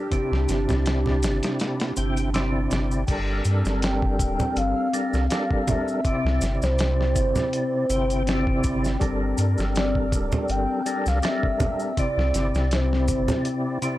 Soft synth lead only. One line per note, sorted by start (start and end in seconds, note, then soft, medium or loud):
0.00 2.31 G4 medium
3.83 4.59 G5 loud
4.58 5.70 F5 loud
5.68 6.62 E5 loud
6.63 7.13 C5 loud
7.16 8.60 C5 medium
9.77 10.52 D5 loud
10.51 11.09 G5 loud
11.08 11.24 F5 loud
11.25 12.00 E5 loud
11.99 12.76 D5 loud
12.74 13.47 C5 medium